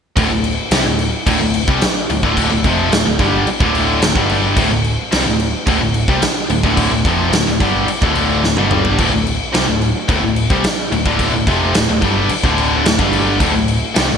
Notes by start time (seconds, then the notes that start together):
0.17 D1 D2 A2, kick, crash
0.30 D1 D2 A2
0.44 crash
0.71 C2 C3 G3, snare, crash
0.85 D1 D2 A2
0.99 crash
1.27 D1 D2 A2, kick, crash
1.40 D1 D2 A2
1.54 crash
1.68 C2 C3 G3, kick
1.81 muted picked electric bass stroke, muted distorted electric guitar stroke, muted overdriven electric guitar stroke, snare, crash
2.10 D1 D2 A2, crash
2.23 D1 D2 A2 D3, kick
2.37 kick, crash
2.51 D1 D2 A2
2.64 F1 F2 C3 F3, kick, crash
2.92 D1 D2 A2, snare, crash
3.05 D1 D2 A2
3.19 G1 G2 D3 G3, kick, crash
3.47 muted overdriven electric guitar stroke, muted picked electric bass stroke, muted distorted electric guitar stroke, crash
3.60 D1 D2 A2 D3, kick
3.75 crash
4.02 D1 D2 A2, snare, crash
4.16 G1 G2 D3 G3, kick
4.29 crash
4.57 D1 D2 A2, kick, crash
4.71 D1 D2 A2
4.84 crash
5.12 C2 C3 G3, snare, crash
5.26 D1 D2 A2
5.40 crash
5.67 D1 D2 A2, kick, crash
5.82 D1 D2 A2
5.94 crash
6.08 C2 C3 G3, kick
6.22 muted overdriven electric guitar stroke, muted picked electric bass stroke, muted distorted electric guitar stroke, snare, crash
6.49 D1 D2 A2, crash
6.63 D1 D2 A2 D3, kick
6.77 kick, crash
6.91 D1 D2 A2
7.05 F1 F2 C3 F3, kick, crash
7.33 D1 D2 A2, snare, crash
7.47 D1 D2 A2, snare
7.60 G1 G2 D3 G3, kick, crash
7.88 muted overdriven electric guitar stroke, muted picked electric bass stroke, muted distorted electric guitar stroke, crash
8.02 D1 D2 A2 D3, kick
8.15 crash
8.44 D1 D2 A2, snare
8.57 G1 G2 D3 G3, high tom
8.71 mid tom
8.85 floor tom
8.99 D1 D2 A2, kick, crash
9.13 D1 D2 A2
9.27 crash
9.54 C2 C3 G3, snare, crash
9.67 D1 D2 A2
9.82 crash
10.08 D1 D2 A2, kick, crash
10.22 D1 D2 A2
10.36 crash
10.50 C2 C3 G3, kick
10.64 muted picked electric bass stroke, muted overdriven electric guitar stroke, muted distorted electric guitar stroke, snare, crash
10.92 D1 D2 A2, crash
11.05 D1 D2 A2 D3, kick
11.19 kick, crash
11.34 D1 D2 A2
11.47 F1 F2 C3 F3, kick, crash
11.74 D1 D2 A2, snare, crash
11.89 D1 D2 A2
12.01 G1 G2 D3 G3, kick, crash
12.29 muted picked electric bass stroke, muted distorted electric guitar stroke, muted overdriven electric guitar stroke, crash
12.44 D1 D2 A2 D3, kick
12.58 crash
12.85 D1 D2 A2, snare, crash
12.98 G1 G2 D3 G3, kick
13.13 crash
13.40 D1 D2 A2, kick, crash
13.54 D1 D2 A2
13.68 crash
13.94 C2 C3 G3, snare, crash
14.09 D1 D2 A2, snare